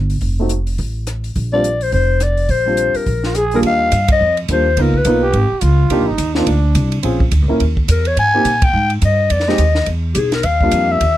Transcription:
Already playing: upright bass G1
0.10 open hi-hat
0.21 upright bass F1, kick, open hi-hat
0.39 grand piano A3 C4 D#4 F#4
0.49 closed hi-hat
0.67 open hi-hat
0.78 upright bass A1, kick, open hi-hat
1.07 cross-stick, closed hi-hat
1.24 open hi-hat
1.36 upright bass A#1, kick, open hi-hat
1.53 grand piano G3 C4 D4 F4, clarinet D5
1.64 closed hi-hat
1.81 clarinet C5, open hi-hat
1.92 upright bass F1, clarinet C5, kick, open hi-hat
2.20 clarinet D5, cross-stick, closed hi-hat
2.37 open hi-hat
2.49 upright bass A#1, clarinet C5, kick, open hi-hat
2.66 grand piano G3 C4 D4 F4
2.77 closed hi-hat
2.94 clarinet A#4, muted upright bass stroke, open hi-hat
3.06 upright bass A#1, kick, open hi-hat
3.24 trombone F4, snare
3.35 trombone G#4, clarinet G#4, cross-stick, closed hi-hat
3.51 grand piano D#2 G3 A#3 D4 F4, open hi-hat
3.56 clarinet A#4
3.63 upright bass D#2, clarinet F5, kick, ride
3.92 upright bass G2, kick, hi-hat pedal, ride
4.08 kick, ride
4.13 clarinet D#5
4.21 upright bass F2
4.37 ride
4.48 upright bass D#2, grand piano G3 A#3 D4 F4, kick, hi-hat pedal, ride
4.53 clarinet C5
4.77 upright bass C#2, grand piano A#3 B3 D#4 F4, kick, ride
4.82 clarinet A#4
4.94 kick
4.98 clarinet B4
5.05 upright bass B1, grand piano A#3 B3 D#4 F4, kick, hi-hat pedal, ride
5.23 trombone G4
5.33 upright bass G#1, kick, ride
5.52 muted upright bass stroke
5.61 upright bass C#2, trombone F4, kick, hi-hat pedal, ride
5.90 upright bass C2, grand piano A#3 D4 D#4 G4, kick, ride
6.00 upright bass A#1
6.09 upright bass G1, trombone D#4
6.18 upright bass D#2, kick, hi-hat pedal, ride
6.35 grand piano A#3 D4 D#4 F4, trombone C4, snare
6.47 upright bass D2, trombone D4, kick, ride
6.75 upright bass C2, kick, hi-hat pedal, ride
6.92 ride
7.03 upright bass A#1, grand piano C4 C#4 F4 G#4, kick, ride
7.20 kick
7.31 upright bass D2, kick, hi-hat pedal, ride
7.42 upright bass C#2
7.48 upright bass A#1, grand piano A#3 C#4 E4 A#4
7.60 upright bass D#2, kick, ride
7.77 kick
7.88 upright bass E2, clarinet A#4, kick, hi-hat pedal, ride
8.05 clarinet C#5, ride
8.17 upright bass G#2, clarinet G#5, kick, ride
8.34 grand piano A#3 C4 D#4 G4
8.45 upright bass A#2, kick, hi-hat pedal, ride
8.62 clarinet G5, kick, ride
8.73 upright bass G#2
8.90 ride
9.02 upright bass G2, clarinet D#5, kick, hi-hat pedal, ride
9.30 upright bass F2, clarinet D5, kick, ride
9.40 snare
9.48 grand piano G#3 C4 D#4 G4, clarinet D#5, snare
9.58 upright bass D#2, kick, hi-hat pedal, ride
9.75 snare
9.86 upright bass E2, kick, ride
10.14 upright bass B1, clarinet G4 G#4, kick, hi-hat pedal, ride
10.32 clarinet A#4, snare, ride
10.43 upright bass D#2, clarinet F5, kick, ride
10.61 grand piano G3 A#3 D4 F4, kick
10.71 upright bass F2, kick, hi-hat pedal, ride
10.91 clarinet E5
11.01 upright bass D#2, kick, ride

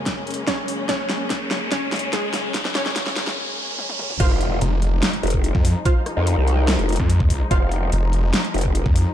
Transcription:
Already playing: string section F#2 C#3 G#3 A#3 C#4, riser
0.06 kick, snare, closed hi-hat
0.27 closed hi-hat
0.31 closed hi-hat
0.34 closed hi-hat
0.47 synth pluck C#4 C#5, kick, snare, closed hi-hat
0.68 open hi-hat
0.89 synth pluck C#4 C#5, kick, snare, closed hi-hat
1.10 snare, closed hi-hat
1.30 kick, snare, closed hi-hat
1.51 snare, closed hi-hat
1.72 synth pluck C#4 C#5, kick, snare, closed hi-hat
1.92 snare, closed hi-hat
1.96 closed hi-hat
1.99 closed hi-hat
2.13 synth pluck G#3 G#4, kick, snare, closed hi-hat
2.34 snare, open hi-hat
2.54 kick, snare, closed hi-hat
2.65 snare
2.75 synth pluck C#4 C#5, snare, closed hi-hat
2.86 snare
2.96 kick, snare, closed hi-hat
3.07 snare
3.16 snare, closed hi-hat
3.27 snare
3.79 high tom
3.89 high tom
3.99 mid tom
4.10 mid tom
4.20 wobble bass F1, string section F3 G#3 D#4, synth stab F4 C5 F5, kick, closed hi-hat, crash, impact
4.41 closed hi-hat
4.61 detuned saw bass F1, closed hi-hat
4.82 closed hi-hat
5.03 snare, closed hi-hat
5.13 closed hi-hat
5.23 wobble bass F1, closed hi-hat
5.27 closed hi-hat
5.30 kick, closed hi-hat
5.44 closed hi-hat
5.55 detuned saw bass F2, kick
5.65 open hi-hat
5.85 synth stab F4 C5 F5, kick, closed hi-hat
6.06 cross-stick, closed hi-hat
6.17 wobble bass F2
6.27 closed hi-hat
6.37 wobble bass C2
6.48 closed hi-hat
6.68 snare, closed hi-hat
6.79 wobble bass F1, closed hi-hat
6.89 closed hi-hat
6.92 closed hi-hat
6.96 detuned saw bass F2, kick, closed hi-hat
7.10 closed hi-hat
7.20 kick
7.30 kick, open hi-hat
7.51 wobble bass F1, synth stab F4 C5 F5, kick, closed hi-hat
7.72 closed hi-hat
7.92 detuned saw bass F1, closed hi-hat
8.13 closed hi-hat
8.34 snare, closed hi-hat
8.44 closed hi-hat
8.54 wobble bass F1, closed hi-hat
8.58 closed hi-hat
8.61 kick, closed hi-hat
8.75 closed hi-hat
8.86 detuned saw bass F2, kick
8.96 open hi-hat

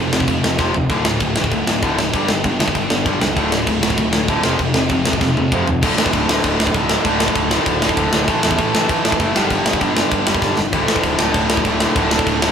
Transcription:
Already playing: picked electric bass F1, distorted electric guitar F2 C3
0.00 distorted electric guitar C3 F3 A3 C4 F4
0.13 picked electric bass F1, distorted electric guitar F2 C3, snare
0.20 kick
0.27 picked electric bass F1, distorted electric guitar F2 C3, kick, crash
0.44 picked electric bass F1, distorted electric guitar F2 C3, snare
0.58 picked electric bass F1, distorted electric guitar F2 C3 F3, kick, snare
0.74 picked electric bass F1, distorted electric guitar F2 C3, floor tom
0.89 picked electric bass D1, distorted electric guitar D2 A2 D3 A3 F#4, kick, crash
1.05 distorted electric guitar D2 A2, snare
1.20 picked electric bass D1, distorted electric guitar D2 A2, kick, crash
1.36 picked electric bass D1, distorted electric guitar D2 A2 D3 A3 F#4, snare
1.40 distorted electric guitar D2, kick
1.52 picked electric bass D1, distorted electric guitar D2 A2, kick, crash
1.66 picked electric bass D1, distorted electric guitar D2 A2, snare
1.82 picked electric bass D1, distorted electric guitar D2 A2 D3, kick, crash
1.99 distorted electric guitar D2 A2, snare
2.13 picked electric bass G1, distorted electric guitar G2 D3 G3 B3 D4 G4, kick, crash
2.28 picked electric bass G1, distorted electric guitar G2 D3, snare
2.44 picked electric bass G1, distorted electric guitar G2 D3, kick, crash
2.59 picked electric bass G1, distorted electric guitar G2 D3 G3 B3 D4 G4, snare
2.68 kick
2.75 picked electric bass G1, distorted electric guitar G2 D3, kick, crash
2.90 picked electric bass G1, distorted electric guitar G2 D3, snare
3.05 picked electric bass G1, distorted electric guitar G2 D3 G3, kick, crash
3.20 picked electric bass C#2, distorted electric guitar G2 D3, snare
3.35 picked electric bass D1, distorted electric guitar D2 A2 D3 A3 F#4, kick, crash
3.51 distorted electric guitar D2 A2, snare
3.67 picked electric bass D1, distorted electric guitar D2 A2, kick, crash
3.81 picked electric bass D1, distorted electric guitar D2 A2 D3 A3 F#4, snare
3.85 distorted electric guitar D2
3.90 kick
3.97 picked electric bass D1, distorted electric guitar D2 A2, kick, crash
4.12 picked electric bass D1, distorted electric guitar D2 A2, snare
4.28 picked electric bass D1, distorted electric guitar D2 A2 D3, kick, crash
4.42 picked electric bass F1, distorted electric guitar F2 C3 F3 A3 C4 F4, snare
4.58 picked electric bass F1, distorted electric guitar F2 C3, kick, crash
4.74 picked electric bass F1, distorted electric guitar F2 C3, snare
4.89 picked electric bass F1, distorted electric guitar F2 C3 F3 A3 C4 F4, kick, crash
5.05 picked electric bass F1, distorted electric guitar F2 C3, snare
5.13 kick
5.21 picked electric bass F1, distorted electric guitar F2 C3, kick, snare
5.37 picked electric bass F1, distorted electric guitar F2 C3, high tom
5.52 picked electric bass F1, distorted electric guitar F2 C3 F3, kick, mid tom
5.67 picked electric bass F1, distorted electric guitar F2 C3, floor tom
5.81 picked electric bass D1, distorted electric guitar D2 A2 D3 A3 F#4, kick, crash
5.98 picked electric bass A1, snare
6.06 kick
6.13 picked electric bass D1, kick, crash
6.28 picked electric bass D1, distorted electric guitar D2 A2 D3, snare
6.44 picked electric bass D1, kick, crash
6.59 picked electric bass D1, snare
6.67 kick
6.74 picked electric bass D1, distorted electric guitar D2 A2 D3, kick, crash
6.89 snare
7.04 picked electric bass D1, distorted electric guitar D2 A2 D3 A3 F#4, kick, crash
7.20 snare
7.28 kick
7.35 picked electric bass D1, kick, crash
7.51 distorted electric guitar D2 A2 D3, snare
7.66 picked electric bass D1, kick, crash
7.81 picked electric bass D1, snare
7.89 kick
7.97 picked electric bass D1, distorted electric guitar D2 A2 D3, kick, crash
8.13 picked electric bass D1, snare
8.27 picked electric bass A1, distorted electric guitar A2 E3 A3 C#4 E4 A4, kick, crash
8.43 picked electric bass E2, snare
8.51 kick
8.59 picked electric bass A1, kick, crash
8.73 picked electric bass A1, distorted electric guitar A2 E3 A3, snare
8.89 picked electric bass A1, kick, crash
9.05 picked electric bass A1, snare
9.12 kick
9.19 picked electric bass F#1, distorted electric guitar A2 E3 A3, kick, crash
9.34 picked electric bass G1, distorted electric guitar G2 D3 G3 B3 D4 G4, snare
9.50 picked electric bass G1, kick, crash
9.66 snare
9.73 kick
9.80 picked electric bass G1, distorted electric guitar G2 D3 G3, kick, crash
9.97 snare
10.12 picked electric bass G1, kick, crash
10.27 picked electric bass G1, distorted electric guitar G2 D3 G3, snare
10.34 kick
10.42 picked electric bass G1, kick, snare
10.57 picked electric bass G1, snare
10.72 picked electric bass D1, distorted electric guitar D2 A2 D3 A3 F#4, kick, crash
10.88 picked electric bass A1, snare
10.96 kick
11.03 picked electric bass D1, kick, crash
11.19 picked electric bass D1, distorted electric guitar D2 A2 D3, snare
11.34 picked electric bass D1, kick, crash
11.50 picked electric bass D1, snare
11.57 kick
11.65 picked electric bass D1, distorted electric guitar D2 A2 D3, kick, crash
11.80 snare
11.96 picked electric bass D1, distorted electric guitar D2 A2 D3 A3 F#4, kick, crash
12.11 snare
12.19 kick
12.26 picked electric bass D1, kick, crash
12.42 distorted electric guitar D2 A2 D3, snare

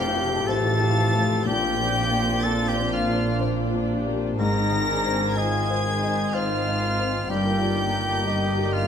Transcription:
Already playing: double bass section F1, cello section F2, grand piano F2 C3 A3 G4 C5, french horn section A3 G4, oboe G4, violin section A4 F5, flute G5
0.00 viola section C4, violin section G6
0.15 grand piano G4
0.47 double bass section A1, cello section A2, viola section C4, violin section F4 F5 A6, oboe A4, grand piano C5, flute A5
0.81 grand piano G4
1.15 grand piano A3
1.46 double bass section A#1, grand piano A#2, cello section A#2, viola section A#3 D4, french horn section C4 D4, oboe G4, violin section D5 G6, flute G5
1.80 grand piano F3
2.11 grand piano A#3
2.43 viola section C4, grand piano D4, oboe A4, violin section D5 A6, flute A5
2.68 oboe G4, flute G5, violin section G6
2.77 grand piano C5
2.93 oboe F4, flute F5, violin section F6
3.10 grand piano D4
3.41 viola section D4 F4, grand piano C5
3.75 grand piano D4
3.93 viola section G4
4.07 grand piano A#3
4.38 double bass section G#1, grand piano G#2, cello section G#2, french horn section D#3, viola section D#4 G#4, violin section G#4 C5, oboe A#4, flute A#5
4.42 violin section A#6
4.72 grand piano D#3
4.90 viola section D4
5.05 grand piano C4
5.36 viola section C4 F4, grand piano D#4, oboe G#4, flute G#5, violin section G#6
5.70 grand piano C5
5.85 viola section D#4
6.03 grand piano D#4
6.33 viola section D#4, oboe F4, grand piano C5, violin section C5 F6, flute F5
6.68 grand piano D#4
6.83 viola section F4
7.00 grand piano C4
7.29 double bass section G1, cello section G2, grand piano G2, french horn section G3, viola section A#3, oboe G4, violin section A#4 D5 G6, flute G5
7.63 grand piano G3
7.79 viola section A#3
7.94 grand piano A#3
8.25 viola section G3 D#4, grand piano D#4, violin section D#5
8.58 grand piano G4
8.73 viola section A#3, oboe F4, flute F5, violin section F6

